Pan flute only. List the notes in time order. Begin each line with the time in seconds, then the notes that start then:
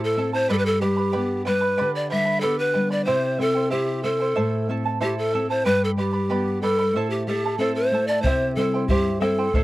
0.04 A4
0.34 C5
0.50 A4 B4
0.58 B4
0.66 A4
0.81 G4
1.46 B4
1.95 D5
2.10 E5
2.41 A4
2.59 B4
2.91 D5
3.05 C5
3.41 A4
3.71 G4
4.03 A4
5.03 G4
5.18 A4
5.50 C5
5.65 B4
5.84 A4
5.99 G4
6.62 A4
7.10 G4
7.27 G4
7.58 A4
7.75 C5
8.07 D5
8.22 C5
8.56 A4
8.88 G4
9.21 A4